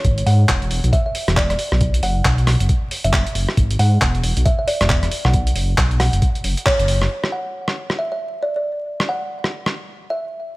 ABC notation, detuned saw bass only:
X:1
M:4/4
L:1/16
Q:"Swing 16ths" 1/4=136
K:Elyd
V:1 name="Detuned saw bass" clef=bass
G,,,2 G,,2 E,,,3 B,,, z3 E,,,3 z B,,,- | B,,,2 F,,,2 B,,,3 F,,, z3 F,,, F,,, z F,,, z | G,,,2 G,,2 E,,,3 B,,, z3 E,,,3 z B,,,- | B,,,2 F,,,2 B,,,3 F,,, z2 F,,, z2 F,,,3 |
z16 | z16 |]